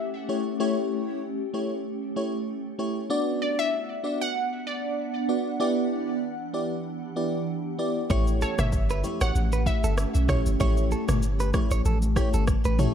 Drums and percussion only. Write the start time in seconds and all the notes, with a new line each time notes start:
8.10 kick, low conga, shaker
8.27 shaker
8.41 high conga, shaker
8.58 cross-stick, mid tom, high conga, shaker
8.73 kick, shaker
8.90 shaker
9.04 high conga, low conga, shaker
9.21 cross-stick, high conga, shaker
9.35 low conga, shaker
9.52 high conga, shaker
9.66 kick, shaker
9.84 shaker
9.98 cross-stick, shaker
10.15 high conga, shaker
10.29 kick, cross-stick, mid tom, low conga, shaker
10.46 shaker
10.60 kick, low conga, shaker
10.77 shaker
10.91 high conga, shaker
11.08 cross-stick, mid tom, high conga, shaker
11.22 shaker
11.40 shaker
11.54 kick, cross-stick, high conga, low conga, shaker
11.71 high conga, shaker
11.85 low conga, shaker
12.02 high conga, shaker
12.16 kick, cross-stick, shaker
12.34 shaker
12.48 kick, cross-stick, shaker
12.65 high conga, shaker
12.79 mid tom, low conga, shaker